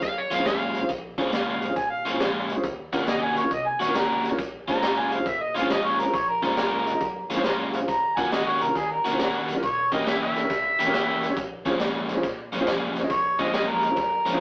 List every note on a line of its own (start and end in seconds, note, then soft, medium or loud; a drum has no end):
0.02 0.26 F#2 medium
0.02 0.17 F5 loud
0.02 kick medium
0.02 snare soft
0.02 closed hi-hat medium
0.18 0.31 C#5 medium
0.31 0.43 F2 medium
0.31 0.44 A#2 medium
0.31 0.45 G#3 medium
0.31 0.45 C#4 medium
0.31 0.45 F4 medium
0.31 0.35 G#4 soft
0.31 0.35 C5 soft
0.31 0.46 F5 medium
0.31 closed hi-hat medium
0.38 0.46 C#4 medium
0.38 0.46 F4 medium
0.38 0.46 G#4 medium
0.38 0.46 C5 medium
0.45 0.82 F#2 medium
0.45 0.79 A#2 medium
0.45 0.79 G#3 medium
0.45 0.79 C#4 medium
0.45 0.80 F4 medium
0.45 0.89 F5 medium
0.45 kick medium
0.45 snare loud
0.45 closed hi-hat medium
0.74 0.78 G#4 soft
0.74 0.79 C5 soft
0.74 closed hi-hat medium
0.81 0.89 C#4 medium
0.81 0.89 F4 medium
0.81 0.90 G#4 medium
0.81 0.90 C5 medium
0.89 1.13 A#1 medium
0.89 kick loud
0.89 closed hi-hat medium
1.18 1.30 C#2 medium
1.18 1.31 A#2 medium
1.18 1.31 G#3 medium
1.18 1.25 C#4 medium
1.18 1.32 C#4 medium
1.18 1.26 F4 medium
1.18 1.32 F4 medium
1.18 1.26 G#4 medium
1.18 1.26 C5 medium
1.18 kick medium
1.18 closed hi-hat medium
1.32 1.57 D#2 medium
1.32 1.66 A#2 medium
1.32 1.66 G#3 medium
1.32 1.67 C#4 medium
1.32 1.67 F4 medium
1.32 1.47 F5 medium
1.32 snare loud
1.32 closed hi-hat medium
1.47 1.76 F5 medium
1.61 1.74 F#2 medium
1.61 1.65 G#4 soft
1.61 1.66 C5 soft
1.61 closed hi-hat medium
1.69 1.77 C#4 medium
1.69 1.77 F4 medium
1.69 1.77 G#4 medium
1.69 1.77 C5 medium
1.76 2.01 A#2 medium
1.76 1.90 G#5 medium
1.76 kick medium
1.76 closed hi-hat medium
1.90 2.14 F5 medium
2.05 2.18 F#2 medium
2.05 2.19 A#2 medium
2.05 2.20 G#3 medium
2.05 2.20 C#4 medium
2.05 2.20 F4 medium
2.05 2.09 G#4 soft
2.05 2.10 C5 soft
2.05 closed hi-hat medium
2.13 2.20 C#4 medium
2.13 2.21 F4 medium
2.13 2.21 G#4 medium
2.13 2.21 C5 medium
2.20 2.44 F2 medium
2.20 2.54 A#2 medium
2.20 2.54 G#3 medium
2.20 2.54 C#4 medium
2.20 2.54 F4 medium
2.20 snare loud
2.20 closed hi-hat medium
2.49 2.61 C#2 medium
2.49 2.53 G#4 soft
2.49 2.54 D#5 soft
2.49 closed hi-hat medium
2.56 2.64 C#4 medium
2.56 2.64 F4 medium
2.56 2.64 G#4 medium
2.56 2.65 C5 medium
2.63 2.88 D#2 loud
2.63 kick loud
2.63 closed hi-hat medium
2.93 3.07 D#3 medium
2.93 3.07 A#3 medium
2.93 3.00 C#4 medium
2.93 3.07 C#4 medium
2.93 3.00 F4 medium
2.93 3.08 F#4 medium
2.93 3.01 F#4 medium
2.93 3.01 A#4 medium
2.93 kick medium
2.93 snare soft
2.93 closed hi-hat medium
3.07 3.32 C3 medium
3.07 3.41 D#3 medium
3.07 3.42 A#3 medium
3.07 3.42 C#4 medium
3.07 3.42 F#4 medium
3.07 3.24 D#5 medium
3.07 snare loud
3.07 closed hi-hat medium
3.23 3.37 G#5 medium
3.36 3.49 G#2 medium
3.36 3.40 F#4 soft
3.36 3.41 A#4 soft
3.36 3.54 C#5 medium
3.36 closed hi-hat medium
3.43 3.51 C#4 medium
3.43 3.51 F4 medium
3.43 3.51 F#4 medium
3.43 3.52 A#4 medium
3.51 3.76 C3 medium
3.51 3.68 D#5 loud
3.51 kick medium
3.51 closed hi-hat medium
3.67 3.81 G#5 medium
3.80 3.93 A#2 medium
3.80 3.94 D#3 medium
3.80 3.94 A#3 medium
3.80 3.95 C#4 medium
3.80 3.95 F#4 medium
3.80 3.84 F#4 soft
3.80 3.85 A#4 soft
3.80 3.98 C#5 medium
3.80 closed hi-hat medium
3.88 3.95 C#4 medium
3.88 3.95 F4 medium
3.88 3.95 F#4 medium
3.88 3.96 A#4 medium
3.95 4.29 D#3 medium
3.95 4.29 A#3 medium
3.95 4.29 C#4 medium
3.95 4.29 F#4 medium
3.95 4.24 A#4 loud
3.95 snare loud
3.95 closed hi-hat medium
4.24 4.28 F#4 soft
4.24 4.28 G#4 soft
4.24 snare soft
4.24 closed hi-hat medium
4.31 4.38 C#4 medium
4.31 4.39 F4 medium
4.31 4.39 F#4 medium
4.31 4.39 A#4 medium
4.39 4.63 A#1 medium
4.39 kick loud
4.39 closed hi-hat medium
4.68 4.80 C#2 medium
4.68 4.81 A#2 medium
4.68 4.82 G#3 medium
4.68 4.75 C#4 medium
4.68 4.82 C#4 medium
4.68 4.83 F4 medium
4.68 4.75 F4 medium
4.68 4.76 G#4 medium
4.68 4.76 C5 medium
4.68 5.00 A#5 medium
4.68 kick medium
4.68 snare soft
4.68 closed hi-hat medium
4.82 5.07 D#2 medium
4.82 5.16 A#2 medium
4.82 5.16 G#3 medium
4.82 5.16 C#4 medium
4.82 5.17 F4 medium
4.82 snare loud
4.82 closed hi-hat medium
4.98 5.14 G#5 medium
5.11 5.24 F#2 medium
5.11 5.15 G#4 soft
5.11 5.16 C5 soft
5.11 5.29 F5 medium
5.11 closed hi-hat medium
5.18 5.26 C#4 medium
5.18 5.26 F4 medium
5.18 5.26 G#4 medium
5.18 5.27 C5 medium
5.26 5.50 A#2 medium
5.26 5.44 E5 medium
5.26 kick loud
5.26 closed hi-hat medium
5.42 5.56 D#5 medium
5.55 5.68 F#2 medium
5.55 5.68 A#2 medium
5.55 5.68 G#3 medium
5.55 5.69 C#4 medium
5.55 5.69 F4 medium
5.55 5.59 G#4 soft
5.55 5.59 C5 soft
5.55 5.70 F5 medium
5.55 closed hi-hat medium
5.61 5.69 C#4 medium
5.61 5.70 F4 medium
5.61 5.70 G#4 medium
5.61 5.70 C5 medium
5.69 5.95 F2 medium
5.69 6.03 A#2 medium
5.69 6.03 G#3 medium
5.69 6.03 C#4 medium
5.69 6.04 F4 medium
5.69 5.87 D#5 medium
5.69 snare loud
5.69 closed hi-hat medium
5.85 6.01 C#5 medium
5.98 6.11 C#2 medium
5.98 6.02 G#4 soft
5.98 6.16 A#4 loud
5.98 6.03 C5 soft
5.98 closed hi-hat medium
6.05 6.13 C#4 medium
6.05 6.13 F4 medium
6.05 6.13 G#4 medium
6.05 6.14 C5 medium
6.14 6.38 A#1 medium
6.14 6.28 C#5 loud
6.14 kick loud
6.14 closed hi-hat medium
6.29 6.43 A#4 medium
6.42 6.55 D#2 medium
6.42 6.56 A#2 medium
6.42 6.57 G#3 medium
6.42 6.50 C#4 medium
6.42 6.57 C#4 medium
6.42 6.50 F4 medium
6.42 6.57 F4 medium
6.42 6.50 G#4 medium
6.42 7.28 A#4 medium
6.42 6.50 C5 medium
6.42 kick medium
6.42 snare soft
6.42 closed hi-hat medium
6.57 6.82 F#2 medium
6.57 6.91 A#2 medium
6.57 6.91 G#3 medium
6.57 6.91 C#4 medium
6.57 6.92 F4 medium
6.57 snare loud
6.57 closed hi-hat medium
6.85 6.99 D#2 medium
6.85 6.90 G#4 soft
6.85 6.90 D#5 soft
6.85 closed hi-hat medium
6.93 7.01 C#4 medium
6.93 7.01 F4 medium
6.93 7.01 G#4 medium
6.93 7.01 D#5 medium
7.01 7.25 F#2 medium
7.01 kick loud
7.01 closed hi-hat medium
7.29 7.42 F2 medium
7.29 7.44 A#2 medium
7.29 7.44 G#3 medium
7.29 7.44 C#4 medium
7.29 7.44 F4 medium
7.29 7.33 G#4 soft
7.29 7.34 C5 medium
7.29 closed hi-hat medium
7.36 7.44 C#4 medium
7.36 7.44 F4 medium
7.36 7.44 G#4 medium
7.36 7.45 C5 loud
7.44 7.81 F#2 medium
7.44 7.78 A#2 medium
7.44 7.78 G#3 medium
7.44 7.78 C#4 medium
7.44 7.79 F4 medium
7.44 7.72 A#5 medium
7.44 snare loud
7.44 closed hi-hat medium
7.73 7.77 G#4 medium
7.73 7.78 C5 medium
7.73 7.87 F5 medium
7.73 closed hi-hat medium
7.81 7.88 C#4 medium
7.81 7.88 F4 medium
7.81 7.89 G#4 medium
7.81 7.89 C5 medium
7.88 8.12 D#2 medium
7.88 8.19 A#5 loud
7.88 kick loud
7.88 closed hi-hat medium
8.17 8.29 F#2 medium
8.17 8.31 D#3 medium
8.17 8.31 A#3 medium
8.17 8.31 C#4 medium
8.17 8.25 C#4 medium
8.17 8.25 F4 medium
8.17 8.32 F#4 loud
8.17 8.25 F#4 medium
8.17 8.25 A#4 medium
8.17 8.31 G#5 medium
8.17 kick medium
8.17 closed hi-hat medium
8.32 8.56 G#2 medium
8.32 8.65 D#3 medium
8.32 8.66 A#3 medium
8.32 8.66 C#4 medium
8.32 8.66 F#4 medium
8.32 8.49 D#5 medium
8.32 snare loud
8.32 closed hi-hat medium
8.47 8.63 C#5 medium
8.61 8.73 C3 medium
8.61 8.65 F#4 soft
8.61 8.78 A#4 medium
8.61 8.65 A#4 soft
8.61 closed hi-hat medium
8.68 8.75 C#4 medium
8.68 8.76 F4 medium
8.68 8.76 F#4 medium
8.68 8.76 A#4 medium
8.75 8.99 D#3 medium
8.75 8.92 G#4 medium
8.75 kick medium
8.75 snare soft
8.75 closed hi-hat medium
8.91 9.33 A#4 loud
9.05 9.17 C3 medium
9.05 9.19 D#3 medium
9.05 9.19 A#3 medium
9.05 9.20 C#4 medium
9.05 9.19 F#4 medium
9.05 9.08 F#4 soft
9.05 9.09 A#4 soft
9.05 closed hi-hat medium
9.12 9.19 C#4 medium
9.12 9.20 F4 medium
9.12 9.20 F#4 medium
9.12 9.20 C5 medium
9.19 9.44 A#2 medium
9.19 9.53 D#3 medium
9.19 9.53 A#3 medium
9.19 9.53 C#4 medium
9.19 9.54 F#4 medium
9.19 snare loud
9.19 closed hi-hat medium
9.48 9.60 F#2 medium
9.48 9.52 F#4 soft
9.48 9.53 A#4 soft
9.48 snare soft
9.48 closed hi-hat medium
9.55 9.63 C#4 medium
9.55 9.63 F4 medium
9.55 9.63 F#4 medium
9.55 9.63 A#4 medium
9.63 9.87 E1 loud
9.63 9.91 C#5 loud
9.63 kick loud
9.63 closed hi-hat medium
9.92 10.04 A1 medium
9.92 10.05 E3 medium
9.92 10.06 A#3 medium
9.92 9.99 C#4 medium
9.92 10.06 C#4 medium
9.92 9.99 F#4 medium
9.92 10.07 G4 medium
9.92 9.99 G4 medium
9.92 10.00 A#4 medium
9.92 10.09 D#5 medium
9.92 kick medium
9.92 closed hi-hat medium
10.06 10.30 C#2 medium
10.06 10.40 E3 medium
10.06 10.40 A#3 medium
10.06 10.40 C#4 medium
10.06 10.40 G4 medium
10.06 10.21 E5 medium
10.06 snare loud
10.06 closed hi-hat medium
10.22 11.48 E5 loud
10.35 10.47 A1 medium
10.35 10.39 G4 soft
10.35 10.40 A4 soft
10.35 snare soft
10.35 closed hi-hat medium
10.43 10.50 C#4 medium
10.43 10.50 F#4 soft
10.43 10.50 G4 medium
10.43 10.51 A#4 medium
10.50 10.74 C#2 medium
10.50 kick loud
10.50 snare soft
10.50 closed hi-hat medium
10.79 10.91 A#1 medium
10.79 10.92 E3 medium
10.79 10.93 A#3 medium
10.79 10.93 C#4 medium
10.79 10.82 G4 soft
10.79 10.93 G4 medium
10.79 10.83 A#4 soft
10.79 closed hi-hat medium
10.86 10.93 C#4 medium
10.86 10.94 F#4 medium
10.86 10.94 G4 medium
10.86 10.94 A#4 medium
10.93 11.29 C#2 medium
10.93 11.26 E3 medium
10.93 11.27 A#3 medium
10.93 11.27 C#4 medium
10.93 11.27 G4 medium
10.93 snare loud
10.93 closed hi-hat medium
11.22 11.26 G4 soft
11.22 11.26 A#4 medium
11.22 snare soft
11.22 closed hi-hat medium
11.29 11.37 C#4 medium
11.29 11.37 F#4 medium
11.29 11.37 G4 medium
11.29 11.37 C#5 medium
11.37 11.61 A#1 medium
11.37 kick loud
11.37 closed hi-hat medium
11.65 11.78 C#2 medium
11.65 11.79 A#2 medium
11.65 11.80 F3 medium
11.65 11.80 G#3 medium
11.65 11.80 C#4 medium
11.65 11.73 C#4 medium
11.65 11.73 F4 medium
11.65 11.74 G#4 medium
11.65 11.74 C5 medium
11.65 kick medium
11.65 snare soft
11.65 closed hi-hat medium
11.79 12.05 D#2 medium
11.79 12.14 A#2 medium
11.79 12.14 F3 medium
11.79 12.14 G#3 medium
11.79 12.14 C#4 medium
11.79 snare loud
11.79 closed hi-hat medium
12.09 12.21 F#2 medium
12.09 12.13 G#4 medium
12.09 12.14 C5 medium
12.09 snare soft
12.09 closed hi-hat medium
12.16 12.23 C#4 medium
12.16 12.24 F4 medium
12.16 12.24 G#4 medium
12.16 12.24 C5 medium
12.23 12.48 A#2 medium
12.23 kick loud
12.23 snare soft
12.23 closed hi-hat medium
12.52 12.64 F#2 medium
12.52 12.65 A#2 medium
12.52 12.66 F3 medium
12.52 12.66 G#3 medium
12.52 12.67 C#4 medium
12.52 12.56 G#4 soft
12.52 12.57 C5 soft
12.52 closed hi-hat medium
12.60 12.67 C#4 medium
12.60 12.67 F4 medium
12.60 12.68 G#4 medium
12.60 12.68 C5 loud
12.66 12.91 F2 medium
12.66 13.00 A#2 medium
12.66 13.00 F3 medium
12.66 13.00 G#3 medium
12.66 13.01 C#4 medium
12.66 snare loud
12.66 closed hi-hat medium
12.95 13.08 C#2 medium
12.95 12.99 G#4 soft
12.95 13.00 C5 medium
12.95 snare soft
12.95 closed hi-hat medium
13.02 13.10 C#4 medium
13.02 13.10 F4 medium
13.02 13.11 G#4 medium
13.02 13.11 D#5 medium
13.10 13.34 A#1 medium
13.10 13.42 C#5 loud
13.10 kick loud
13.10 closed hi-hat medium
13.39 13.51 D#2 medium
13.39 13.52 A#2 medium
13.39 13.53 F3 medium
13.39 13.53 G#3 medium
13.39 13.54 C#4 medium
13.39 13.46 C#4 medium
13.39 13.47 F4 medium
13.39 13.47 G#4 medium
13.39 13.47 C5 medium
13.39 13.54 D#5 medium
13.39 kick medium
13.39 snare soft
13.39 closed hi-hat medium
13.53 13.78 F#2 medium
13.53 13.87 A#2 medium
13.53 13.87 F3 medium
13.53 13.87 G#3 medium
13.53 13.87 C#4 medium
13.53 13.70 D#5 loud
13.53 snare loud
13.53 closed hi-hat medium
13.69 14.40 A#4 loud
13.82 13.95 D#2 medium
13.82 13.86 G#4 soft
13.82 13.87 D#5 soft
13.82 closed hi-hat medium
13.90 13.97 C#4 medium
13.90 13.97 F4 medium
13.90 13.98 G#4 medium
13.90 13.98 C5 medium
13.96 14.21 F#2 medium
13.96 kick loud
13.96 snare soft
13.96 closed hi-hat medium
14.25 14.38 F2 medium
14.25 14.38 A#2 medium
14.25 14.39 F3 medium
14.25 14.39 G#3 medium
14.25 14.39 C#4 medium
14.25 14.29 G#4 soft
14.25 14.30 C5 soft
14.25 14.39 A#5 medium
14.25 closed hi-hat medium
14.33 14.40 C#4 medium
14.33 14.40 F4 medium
14.33 14.40 G#4 medium
14.33 14.40 C5 medium